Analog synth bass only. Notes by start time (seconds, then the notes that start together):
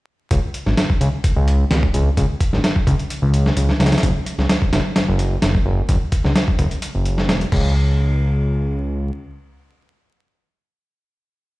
0.31 C#2
0.66 G#1
1.01 C#2
1.24 C#2
1.36 C#2
1.70 C#2
1.94 C#2
2.17 C#2
2.53 G#1
2.87 C#2
3.22 C#2
3.57 C#2
3.80 C#2
4.03 F#1
4.38 C#2
4.73 F#1
4.96 F#1
5.08 F#1
5.43 F#1
5.66 F#1
5.89 F#1
6.25 C#2
6.59 F#1
6.95 F#1
7.29 E1
7.52 C#2